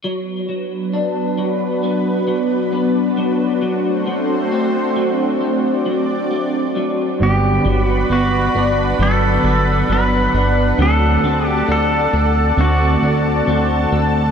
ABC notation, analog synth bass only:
X:1
M:4/4
L:1/8
Q:1/4=67
K:G
V:1 name="Analog synth bass" clef=bass
z8 | z8 | G,,, G,,, G,,, G,,, G,,, G,,, G,,, G,,, | D,, D,, D,, D,, D,, D,, D,, D,, |]